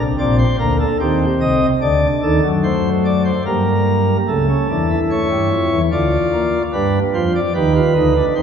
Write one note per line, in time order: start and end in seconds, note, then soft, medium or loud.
0.00 0.15 C2 medium
0.00 0.15 C3 medium
0.18 0.44 A#1 medium
0.18 0.44 A#2 medium
0.18 0.44 C4 medium
0.18 0.36 D5 medium
0.39 0.56 C5 loud
0.59 0.85 D2 medium
0.59 0.85 D3 medium
0.59 0.85 A#3 medium
0.59 0.77 A#4 medium
0.80 0.97 A4 medium
1.00 1.25 D#2 medium
1.00 1.25 D#3 medium
1.00 1.70 C4 medium
1.00 1.25 G4 medium
1.41 1.66 C2 medium
1.41 1.66 C3 medium
1.41 1.66 D#5 medium
1.81 2.07 D2 medium
1.81 2.07 D3 medium
1.81 2.52 D4 medium
1.81 2.07 D5 loud
2.22 2.40 D#2 medium
2.22 2.40 D#3 medium
2.22 2.48 A4 medium
2.43 3.31 F#2 medium
2.43 3.31 F#3 medium
2.64 3.34 A3 medium
2.64 2.89 C5 medium
3.05 3.22 D5 medium
3.25 3.43 C5 medium
3.46 4.17 G2 medium
3.46 4.17 G3 medium
3.46 4.17 A#3 medium
3.46 4.17 A#4 medium
4.28 4.54 C#2 medium
4.28 4.54 C#3 medium
4.28 4.46 A3 medium
4.28 4.99 A4 medium
4.49 4.67 C#4 medium
4.70 4.95 E2 medium
4.70 4.95 E3 medium
4.70 4.87 D4 medium
4.91 5.78 E4 medium
5.11 5.28 A3 medium
5.11 5.81 C#5 medium
5.31 5.49 G2 medium
5.31 5.49 G3 medium
5.51 5.69 F2 medium
5.51 5.69 F3 medium
5.71 5.89 E2 medium
5.71 5.89 E3 medium
5.92 6.17 D2 medium
5.92 6.17 D3 medium
5.92 6.62 F4 medium
5.92 6.62 D5 medium
6.33 6.58 A#3 medium
6.73 6.99 G2 medium
6.73 6.99 G3 medium
6.73 6.99 D4 medium
6.73 6.99 B4 medium
7.14 7.40 F2 medium
7.14 7.40 F3 medium
7.14 7.40 F4 medium
7.14 7.32 C5 medium
7.35 7.53 D5 medium
7.54 7.80 D#2 medium
7.54 7.80 D#3 medium
7.54 7.73 G4 medium
7.54 8.25 B4 medium
7.76 7.93 F4 medium
7.96 8.21 D2 medium
7.96 8.21 D3 medium
7.96 8.13 D#4 medium
8.16 8.34 D4 medium
8.36 8.42 D#2 medium
8.36 8.42 D#3 medium
8.36 8.42 C4 medium
8.36 8.42 C5 medium